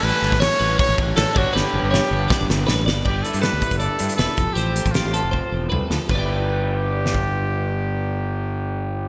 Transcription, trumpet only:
\new Staff \with { instrumentName = "Trumpet" } { \time 4/4 \key g \lydian \tempo 4 = 158 b'4 cis''4 cis''8 r8 a'8 fis'8 | g'2. r4 | \key g \mixolydian g'8 a'8 b'4 a'4 a'4 | g'4 f'2 r4 |
g'1~ | g'1 | }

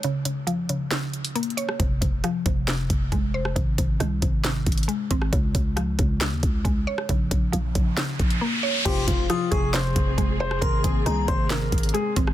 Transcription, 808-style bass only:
\new Staff \with { instrumentName = "808-style bass" } { \clef bass \time 4/4 \key f \minor \tempo 4 = 136 r1 | f,,8 f,,8 r8 f,,4 f,,8 f,,4 | aes,,8 aes,,8 c,8 aes,,4 aes,,8 r8 aes,,8 | des,8 des,4 des,8. ees,16 des,8 des,8 r8 |
bes,,8 bes,,8 bes,,8 bes,,8 r8 bes,,8 r4 | f,,8 f,,8 r8 f,,4 f,,8 f,,4 | aes,,8 aes,,8 c,8 aes,,4 aes,,8 r8 aes,,8 | }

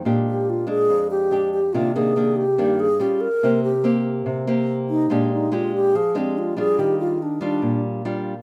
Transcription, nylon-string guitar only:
\new Staff \with { instrumentName = "Nylon-string guitar" } { \time 4/4 \key bes \mixolydian \tempo 4 = 143 << { <aes d' g'>4. <aes d'>4. <aes d' g'>8 r8 | <ees bes d'>8 <ees bes d'>8 <ees bes d'>8 r8 <ees bes d'>8 r8 <g des' f'>8 r8 | <bes c' g'>8 r8 <bes c' g'>4. <bes c' g'>4. | <aes d' g'>4 <aes d' g'>4 r8 <aes d' g'>4 <g d' f'>8~ |
<g d' f'>4 r8 <g d' f'>4. <g d' f'>8 r8 | } \\ { bes,2 f,2 | c2 g,4 r4 | c2 c2 | bes,2 f2 |
ees2 bes,2 | } >> }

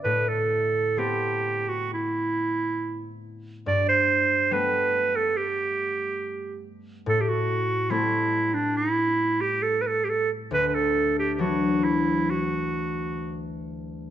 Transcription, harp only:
\new Staff \with { instrumentName = "Harp" } { \clef bass \time 4/4 \key a \dorian \tempo 4 = 68 a,4 <a b c'>2. | g,4 <g a b>2. | a,4 <g a c'>2. | d,4 <e fis d'>2. | }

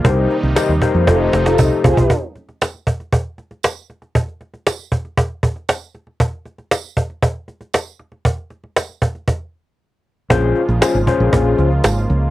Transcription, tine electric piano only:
\new Staff \with { instrumentName = "Tine electric piano" } { \time 4/4 \key bes \dorian \tempo 4 = 117 <ees' g' bes' c''>8 r8 <ees' g' bes' c''>8 <ees' g' bes' c''>8 <ees' g' a' c''>4. r8 | r1 | r1 | r1 |
r1 | <des' f' aes' c''>8 r8 <des' f' aes' c''>8 <des' f' aes' c''>4 r4. | }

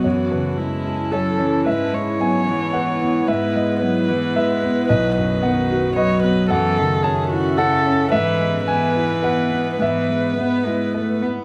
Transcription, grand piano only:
<<
  \new Staff \with { instrumentName = "Grand piano" } { \time 3/4 \key e \major \tempo 4 = 111 cis''8 b'4. cis''4 | e''4 gis''4 fis''4 | e''8 dis''4. e''4 | dis''4 fis''4 dis''4 |
fis''4 a''4 fis''4 | e''4 gis''4 fis''4 | e''2~ e''8 r8 | }
  \new Staff \with { instrumentName = "Grand piano" } { \time 3/4 \key e \major fis,8 cis8 cis'8 e'8 a'8 cis'8 | gis,8 gis8 b8 e'8 b'8 b8 | gis,8 gis8 b8 e'8 b'8 b8 | b,,8 fis,8 b8 fis'8 b'8 b8 |
fis,8 cis8 cis'8 e'8 a'8 cis'8 | gis,8 gis8 b8 e'8 b'8 b8 | gis,8 gis8 b8 e'8 b'8 b8 | }
>>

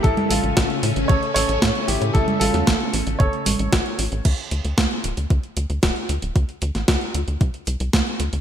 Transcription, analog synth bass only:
\new Staff \with { instrumentName = "Analog synth bass" } { \clef bass \time 4/4 \key a \phrygian \tempo 4 = 114 a,,16 r16 a,,16 a,,16 a,,16 r16 a,16 a,,16 a,,16 r16 a,,16 a,,16 a,16 r16 a,,16 a,16 | a,,16 r16 a,,16 e,16 a,,16 r16 a,,16 a,,16 g,,16 r16 a,,16 a,,16 a,,16 r16 a,,16 a,,16 | d,16 r16 d,16 d,16 d,16 r16 d,,16 d,16 d,16 r16 d,16 d,16 d,,16 r16 d,16 d,,16 | d,16 r16 d,16 a,,16 d,16 r16 d,16 d,16 c,16 r16 c,16 c,16 d,16 r16 d,16 d,16 | }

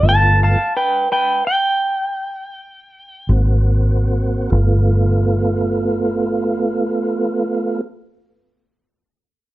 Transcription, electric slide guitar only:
\new Staff \with { instrumentName = "Electric slide guitar" } { \time 12/8 \key g \mixolydian \tempo 4. = 47 <f'' a''>8 <f'' a''>8 <b' g''>8 <b' g''>8 g''2~ g''8 r4. | r1. | }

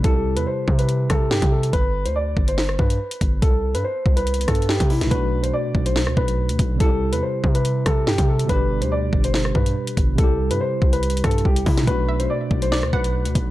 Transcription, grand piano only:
\new Staff \with { instrumentName = "Grand piano" } { \time 4/4 \key c \lydian \tempo 4 = 142 a'8. b'16 c''8. b'8. a'8 g'8 a'8 | b'8. c''16 d''8. c''8. b'4. | a'8. b'16 c''8. b'8. a'8 g'8 e'8 | b'8. c''16 d''8. c''8. b'4. |
a'8. b'16 c''8. b'8. a'8 g'8 a'8 | b'8. c''16 d''8. c''8. b'4. | a'8. b'16 c''8. b'8. a'8 g'8 e'8 | b'8. c''16 d''8. c''8. b'4. | }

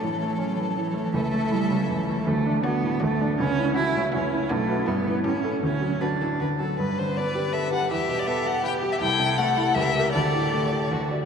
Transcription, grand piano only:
\new Staff \with { instrumentName = "Grand piano" } { \time 3/4 \key d \major \tempo 4 = 161 a,8 a8 cis'8 e8 a,8 a8 | cis,8 a8 e'8 cis8 cis,8 a8 | d,8 d'8 fis'8 a,8 d,8 d'8 | cis,8 e'8 fis'8 cis8 cis,8 e'8 |
b,,8 <fis' b'>8 g,8 <e' b'>8 a,8 <e' a'>8 | d,8 fis8 fis'8 a,8 d,8 fis8 | \key g \major g,8 d8 b8 g'8 b'8 g'8 | e,8 b,8 b8 g'8 b'8 g'8 |
c,8 c8 a8 e'8 cis,8 <g' ais'>8 | d,8 a,8 a8 g'8 d,8 <fis' d''>8 | }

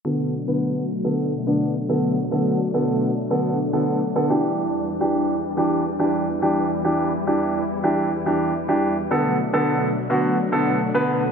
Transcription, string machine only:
\new Staff \with { instrumentName = "String machine" } { \clef bass \time 4/4 \key b \phrygian \tempo 4 = 106 << { d'1~ | d'1~ | d'2.~ d'8 e'8~ | e'1 |
d'1 | } \\ { <b, fis a>1~ | <b, fis a>2.~ <b, fis a>8 <e, e g>8~ | <e, e g>1~ | <e, e g>1 |
<b, fis a>1 | } >> }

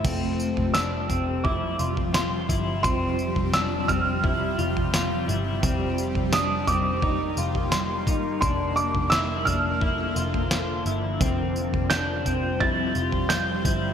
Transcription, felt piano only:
\new Staff \with { instrumentName = "Felt piano" } { \time 4/4 \key c \mixolydian \tempo 4 = 86 r4 e'''4 d'''4 c'''4 | c'''4 e'''8 f'''4 r4. | r4 ees'''8 d'''4. c'''4 | c'''8 d'''8 e'''8 f'''4 r4. |
r4 g'''4 a'''4 g'''4 | }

